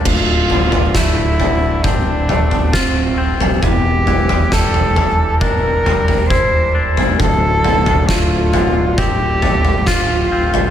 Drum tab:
CC |x---------------|----------------|----------------|
SD |----o-------o---|----o-----------|----o-------o---|
T2 |---o------o-----|---o--o---o-o---|---o------o-----|
FT |o-oo--o-o-oo---o|o-oo-oo-o-oo---o|o-oo--o-o-oo---o|
BD |o---o---o---o---|o---o---o---o---|o---o---o---o---|